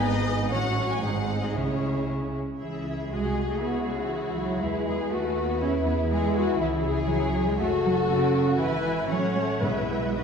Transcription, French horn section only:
2.61 3.08 C#4 soft
2.61 4.58 G#4 soft
3.12 3.62 F#4 soft
3.62 5.09 E4 soft
4.62 6.57 B4 soft
5.12 5.61 F#4 soft
5.61 7.60 E4 soft
6.60 7.57 G#4 medium
7.59 8.57 F#4 medium
7.59 8.59 A4 medium
8.60 9.07 E4 medium
8.60 9.07 B4 soft
9.11 9.63 C#4 soft
9.11 9.63 A4 soft
9.62 10.15 E4 soft
9.62 10.15 G#4 soft
10.15 10.24 D#4 soft

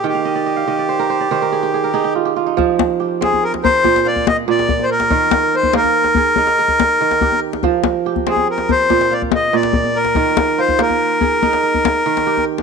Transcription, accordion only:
0.08 2.14 G4 medium
3.23 3.44 G#4 medium
3.43 3.53 A#4 medium
3.64 4.07 C5 medium
4.07 4.26 D5 medium
4.28 4.37 D#5 medium
4.50 4.85 D5 medium
4.83 4.90 C5 medium
4.91 5.56 A#4 medium
5.55 5.74 C5 medium
5.77 7.40 A#4 medium
8.29 8.48 G#4 medium
8.51 8.71 A#4 medium
8.71 9.13 C5 medium
9.13 9.22 D5 medium
9.35 9.55 D#5 medium
9.55 9.98 D5 medium
9.96 10.61 A#4 medium
10.59 10.81 C5 medium
10.81 12.45 A#4 medium

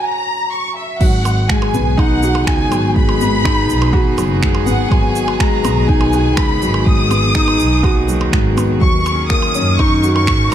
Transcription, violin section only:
0.03 0.52 A#5 loud
0.52 0.76 C#6 loud
0.76 0.99 E5 medium
1.01 1.50 F#5 medium
1.50 1.99 G#5 medium
1.98 2.47 F#5 loud
2.47 2.96 G#5 loud
2.96 4.38 B5 loud
4.68 4.90 F#5 medium
4.92 5.40 G#5 medium
5.40 5.89 A#5 medium
5.88 6.37 G#5 loud
6.37 6.86 B5 loud
6.85 8.32 D#6 loud
8.81 9.27 C#6 loud
9.30 9.79 D#6 loud
9.78 10.14 C#6 loud
10.15 10.49 C#6 loud
10.51 10.55 A#5 loud

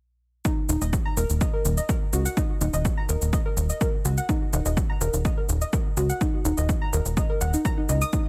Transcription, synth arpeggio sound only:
0.45 0.54 D#4 medium
0.69 0.81 D#4 medium
0.81 0.92 D#5 medium
1.05 1.16 A#5 medium
1.17 1.29 A#4 medium
1.41 1.50 D#5 medium
1.53 1.62 A#4 medium
1.77 1.88 D#5 medium
1.89 1.94 A#4 medium
2.13 2.22 F#4 medium
2.25 2.36 F#5 medium
2.37 2.46 D#4 medium
2.61 2.73 D#4 medium
2.73 2.84 D#5 medium
2.97 3.08 A#5 medium
3.09 3.21 A#4 medium
3.33 3.42 D#5 medium
3.46 3.54 A#4 medium
3.70 3.81 D#5 medium
3.81 3.87 A#4 medium
4.05 4.14 F#4 medium
4.18 4.29 F#5 medium
4.29 4.38 D#4 medium
4.53 4.65 D#4 medium
4.66 4.77 D#5 medium
4.90 5.01 A#5 medium
5.01 5.13 A#4 medium
5.25 5.34 D#5 medium
5.37 5.46 A#4 medium
5.61 5.72 D#5 medium
5.73 5.78 A#4 medium
5.97 6.06 F#4 medium
6.09 6.20 F#5 medium
6.21 6.30 D#4 medium
6.45 6.57 D#4 medium
6.57 6.68 D#5 medium
6.82 6.93 A#5 medium
6.93 7.05 A#4 medium
7.17 7.26 D#5 medium
7.30 7.38 A#4 medium
7.41 7.50 F#5 medium
7.54 7.65 D#4 medium
7.65 7.70 A#5 loud
7.77 7.83 D#4 medium
7.89 7.95 D#5 medium
8.02 8.10 D#6 loud
8.13 8.22 D#4 medium

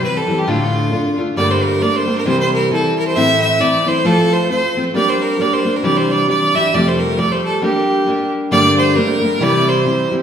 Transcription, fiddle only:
0.04 0.18 B4 medium
0.17 0.40 A4 medium
0.38 0.50 G4 medium
0.48 1.19 F4 medium
1.37 1.52 D5 loud
1.51 1.65 C5 medium
1.64 1.84 A#4 medium
1.82 1.97 D5 loud
1.96 2.17 C5 loud
2.18 2.28 A#4 medium
2.26 2.40 C5 loud
2.40 2.52 C5 medium
2.54 2.71 A#4 medium
2.73 2.96 A4 medium
2.99 3.07 A#4 medium
3.07 3.18 C5 medium
3.16 3.41 E5 loud
3.42 3.62 E5 loud
3.61 3.89 D5 loud
3.88 4.07 C5 medium
4.06 4.34 A4 loud
4.32 4.49 C5 medium
4.50 4.83 C5 medium
4.95 5.11 D5 loud
5.09 5.23 C5 medium
5.22 5.42 A#4 medium
5.41 5.54 D5 medium
5.53 5.77 C5 medium
5.76 5.86 A#4 medium
5.84 5.99 D5 loud
5.97 6.12 C5 medium
6.11 6.29 D5 medium
6.29 6.57 D5 loud
6.55 6.76 E5 loud
6.74 6.89 D5 loud
6.88 7.01 C5 medium
6.99 7.20 A#4 medium
7.19 7.33 D5 medium
7.32 7.44 C5 medium
7.45 7.62 A4 medium
7.64 8.30 G4 medium
8.52 8.76 D5 loud
8.78 8.98 C5 medium
8.97 9.44 A#4 medium
9.42 9.70 D5 loud
9.69 10.13 C5 medium

